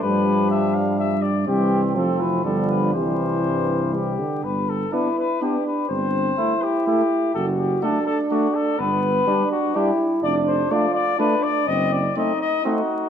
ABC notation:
X:1
M:3/4
L:1/8
Q:1/4=124
K:C
V:1 name="Trumpet"
B2 e f e d | G2 A B A B | c4 G2 | [K:G] B A B B G B |
c3 G G2 | A G A A F A | B3 F G z | [K:Ddor] d c d d B d |
^d =d ^d d ^F2 |]
V:2 name="Flugelhorn"
D4- D z | C2 C2 G,2 | G,4- G, z | [K:G] z2 D2 D2 |
z2 E2 E2 | z2 D2 D2 | z2 D2 D2 | [K:Ddor] z2 D2 D2 |
z2 C2 C2 |]
V:3 name="Trombone"
F,4- F, z | E,2 F, E, D,2 | C,2 G,,2 C, D, | [K:G] z2 E2 D2 |
C2 E4 | F2 D4 | B,2 D2 E2 | [K:Ddor] D2 F2 D2 |
C2 ^D2 D2 |]
V:4 name="French horn"
G,4- G, z | G,2 F,2 F,2 | E,4- E, z | [K:G] z2 B,2 B,2 |
z2 A,2 A,2 | z2 A,2 A,2 | z2 G,2 G,2 | [K:Ddor] z2 A,2 A,2 |
z2 A,2 A,2 |]
V:5 name="Tuba" clef=bass
G,,6 | C,,2 F,,,2 G,,,2 | C,,4- C,, z | [K:G] G,,,2 z4 |
G,,,2 z4 | F,,,2 z4 | G,,,2 z4 | [K:Ddor] F,,,2 z4 |
^F,,,2 z4 |]